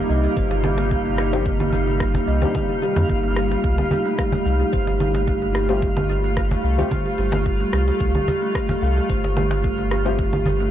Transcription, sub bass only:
0.09 C2
0.37 G1
2.27 C2
2.96 F2
3.09 G1
3.64 C2
4.45 C2
4.73 G1
6.64 C2
7.18 G1
7.73 C2
8.00 C2
8.82 C2
9.10 G1

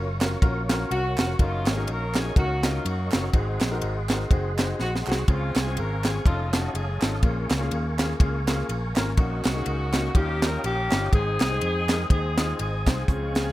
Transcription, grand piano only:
0.21 C#4 F4 F#4 A#4
0.42 C#4 F4 F#4 A#4
0.69 C#4 F4 F#4 A#4
1.18 C#4 F4 F#4 A#4
1.39 C#4 D#4 F#4 A#4
1.77 C#4 D#4 F#4 A#4
2.15 C#4 D#4 F#4 A#4
2.36 C#4 D#4 F#4 A#4
2.63 C#4 D#4 F#4 A#4
3.12 C#4 D#4 F#4 A#4
3.33 G#2 C4 D#4 F#4 G#4
3.71 C4 D#4 F#4 A#4
4.09 C4 D#4 F#4 A#4
4.31 C4 D#4 F#4 G#4
4.58 C4 D#4 F#4 G#4
5.07 C4 D#4 F#4 G#4
5.28 C#3 C4 C#4 F4 G#4
5.66 C4 C#4 F4 G#4
6.04 C4 C#4 F4 G#4
6.26 C#4 D#4 F4 A4
6.53 C#4 D#4 F4 A5
7.01 C#4 D#4 F4 A4
7.23 A#2 A#3 C#4 F4 G#4
7.61 A#3 C#4 F4 G#4
7.99 A#3 C#4 F4 G#4
8.20 A#3 C#4 F4 G#4
8.48 A#3 C#4 F4 G#4
8.96 A#3 C#4 F4 A#4
9.18 A#2 A#3 C#4 D#4 F#4
9.55 A#3 C#4 D#4 G#4
9.93 A#3 C#4 D#4 F#4
10.15 D#3 G3 C#4 D#4 F4
10.43 G3 C#4 D#4 F4
10.92 G3 C#4 D#4 F4
11.13 G#2 G#3 C4 D#4 G#4
11.51 G#3 C4 D#4 G#4
11.89 G#3 C4 D#4 A#4
12.10 G#3 C4 D#4 G#4
12.38 G#3 C4 D#4 F4
12.87 G#3 C4 D#4 G#4
13.09 C#3 C4 C#4 F4 G#4
13.36 C4 C#4 F4 G#4

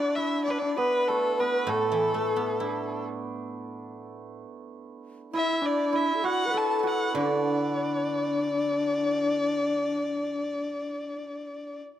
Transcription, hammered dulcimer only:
Already playing: D4 E4 F#4
0.17 E4
0.48 D4
0.62 D4
0.78 B3
1.09 A3
1.40 B3
1.69 A3
2.61 D4
5.33 E4
5.62 D4
5.93 E4
6.24 F#4
6.47 B4
6.54 A4
6.83 F#4
7.14 D4

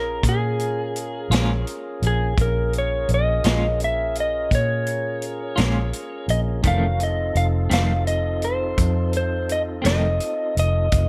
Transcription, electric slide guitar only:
Already playing: A#4
0.29 G#4
2.07 G#4
2.42 A#4
2.78 C#5
3.14 D#5
3.84 E5
4.20 D#5
4.55 C#5
6.30 D#5
6.67 F5
7.03 D#5
7.37 F5
7.73 F5
8.07 D#5
8.44 C5
9.17 C5
9.52 D#5
9.86 D#5
10.59 D#5

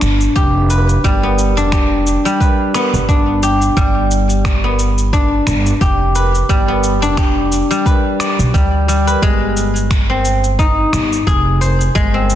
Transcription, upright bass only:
0.02 G1
0.36 F1
1.04 G1
1.57 F1
2.93 G1
3.77 G1
5.47 G1
5.81 F1
6.49 G1
7.02 F1
8.39 B1
8.54 D2
9.22 G1
10.93 G1
11.27 F1
11.95 G1

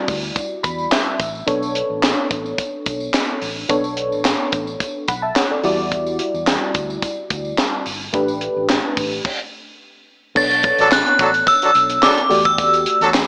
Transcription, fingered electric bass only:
0.08 D2
0.64 E2
1.20 A1
1.48 B1
1.90 A1
2.31 A1
2.87 B1
3.42 A1
3.70 B1
4.12 A1
4.53 A1
5.09 B1
5.64 E2
6.34 E2
6.75 D2
7.31 D2
7.86 G1
8.14 A1
8.57 A1
8.97 A1
10.36 B1
10.79 A1
11.19 A1
11.75 B1
12.31 E2
13.01 E2

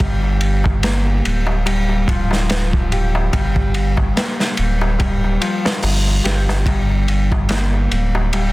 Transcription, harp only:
Already playing: A#3 G4
0.01 G3
0.83 A#3
1.66 G3
2.08 F3
2.92 G4
3.33 G3
4.16 A#3
4.98 G3
5.41 F3
6.24 G4
6.66 G3
7.49 A#3
8.33 G3

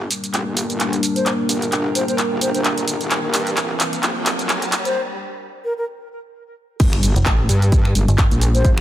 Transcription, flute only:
1.16 C5
1.95 C5
2.08 C5
2.41 C5
2.54 C5
4.85 C5
5.64 A#4
5.78 A#4
8.55 C5

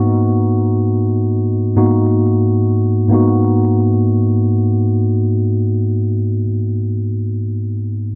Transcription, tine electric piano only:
Already playing: G#2 A#3 B3 D#4 F#4
1.76 G#2 A#3 B3 D#4 F#4
3.08 G#2 A#3 B3
3.12 D#4 F#4

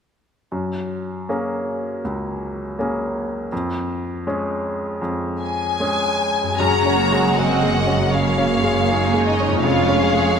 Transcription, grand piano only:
0.52 F#2
1.29 A#3 C#4 G#4
2.04 C#2
2.79 A#3 C#4 G#4
3.52 F2
4.27 G#3 C#4 G#4
5.01 F2
5.80 G#3 C#4 G#4
6.59 F#2
6.86 C#4
7.12 G#3
7.37 G#4
7.62 G#3
7.87 C#4
8.13 C#3
8.38 C#4
8.63 G#3
8.90 G#4
9.14 G#3
9.40 C#4
9.63 F2
9.89 C#4
10.14 G#3

